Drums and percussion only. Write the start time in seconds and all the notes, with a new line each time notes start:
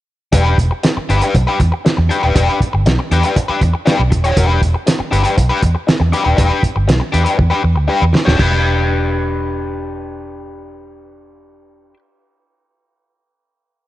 0.33 kick, closed hi-hat
0.58 kick, closed hi-hat
0.83 snare, closed hi-hat
1.10 closed hi-hat
1.22 closed hi-hat
1.35 kick, closed hi-hat
1.60 kick, closed hi-hat
1.86 snare, closed hi-hat
2.11 closed hi-hat
2.36 kick, closed hi-hat
2.60 kick, closed hi-hat
2.86 snare, closed hi-hat
3.12 closed hi-hat
3.23 closed hi-hat
3.36 kick, closed hi-hat
3.61 kick, closed hi-hat
3.87 snare, closed hi-hat
4.12 kick, closed hi-hat
4.24 closed hi-hat
4.37 kick, closed hi-hat
4.62 kick, closed hi-hat
4.87 snare, closed hi-hat
5.13 closed hi-hat
5.25 closed hi-hat
5.38 kick, closed hi-hat
5.63 kick, closed hi-hat
5.88 snare, closed hi-hat
6.13 closed hi-hat
6.38 kick, closed hi-hat
6.63 kick, closed hi-hat
6.89 snare, closed hi-hat
7.14 closed hi-hat
7.26 closed hi-hat
7.39 kick
8.15 snare
8.28 snare
8.39 kick, crash